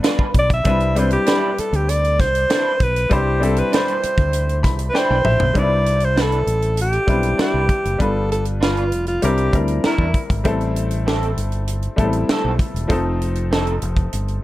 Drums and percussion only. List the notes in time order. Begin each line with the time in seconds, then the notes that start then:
0.04 snare, closed hi-hat
0.19 kick
0.34 kick, closed hi-hat
0.50 kick, closed hi-hat
0.65 kick, closed hi-hat
0.80 closed hi-hat
0.96 closed hi-hat
1.10 closed hi-hat
1.26 snare, closed hi-hat
1.58 closed hi-hat
1.73 closed hi-hat
1.89 closed hi-hat
2.04 closed hi-hat
2.20 kick, snare, closed hi-hat
2.35 closed hi-hat
2.50 snare, closed hi-hat
2.80 kick, closed hi-hat
2.96 closed hi-hat
3.11 kick, closed hi-hat
3.43 closed hi-hat
3.56 closed hi-hat
3.73 snare, closed hi-hat
3.88 closed hi-hat
4.03 closed hi-hat
4.18 kick, closed hi-hat
4.33 closed hi-hat
4.49 closed hi-hat
4.64 kick, snare, closed hi-hat
4.79 closed hi-hat
4.95 snare
5.25 mid tom
5.40 floor tom
5.55 kick, closed hi-hat
5.86 closed hi-hat
6.00 closed hi-hat
6.18 snare
6.32 closed hi-hat
6.47 closed hi-hat
6.62 closed hi-hat
6.77 closed hi-hat
6.92 closed hi-hat
7.08 kick, closed hi-hat
7.23 closed hi-hat
7.39 snare
7.69 kick, closed hi-hat
7.85 closed hi-hat
8.00 kick, closed hi-hat
8.32 closed hi-hat
8.45 closed hi-hat
8.63 snare
8.77 closed hi-hat
8.92 closed hi-hat
9.07 closed hi-hat
9.22 closed hi-hat
9.38 closed hi-hat
9.53 kick, closed hi-hat
9.68 closed hi-hat
9.84 snare
9.98 kick
10.14 kick, closed hi-hat
10.30 kick, closed hi-hat
10.45 kick, closed hi-hat
10.61 closed hi-hat
10.76 closed hi-hat
10.91 closed hi-hat
11.08 snare
11.23 closed hi-hat
11.38 closed hi-hat
11.52 closed hi-hat
11.67 closed hi-hat
11.82 closed hi-hat
11.98 kick, closed hi-hat
12.13 closed hi-hat
12.29 snare
12.59 kick, closed hi-hat
12.76 closed hi-hat
12.90 kick, closed hi-hat
13.22 closed hi-hat
13.35 closed hi-hat
13.53 snare
13.67 closed hi-hat
13.82 closed hi-hat
13.97 kick, closed hi-hat
14.13 closed hi-hat
14.28 closed hi-hat